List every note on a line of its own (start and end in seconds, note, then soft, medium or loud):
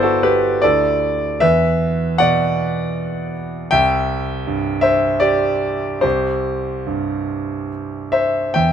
0.00 0.59 G1 soft
0.00 0.59 B3 soft
0.00 0.59 E4 soft
0.00 0.22 F#4 soft
0.00 0.03 A4 medium
0.00 0.23 A4 medium
0.00 0.23 B4 medium
0.00 0.66 C5 medium
0.00 0.62 D5 medium
0.23 0.60 G4 medium
0.23 0.63 B4 medium
0.62 1.40 D2 soft
0.62 1.39 D4 soft
0.62 1.38 E4 soft
0.62 1.38 A4 soft
0.62 1.41 D5 medium
1.40 3.68 E2 soft
1.40 2.14 B4 medium
1.40 2.18 E5 medium
2.18 3.73 B2 soft
2.18 3.31 D5 medium
2.18 3.34 F#5 medium
3.71 6.00 C2 medium
3.71 4.80 E5 medium
3.71 4.83 G5 medium
4.47 6.04 G2 soft
4.81 5.19 C5 medium
4.81 5.22 E5 medium
5.20 5.99 G4 medium
5.20 6.02 D5 medium
6.01 8.51 C2 soft
6.01 7.66 G4 soft
6.01 7.70 C5 medium
6.87 8.55 G2 soft
8.12 8.52 C5 soft
8.12 8.53 E5 medium
8.54 8.73 E2 soft
8.54 8.73 E5 medium
8.54 8.73 G5 medium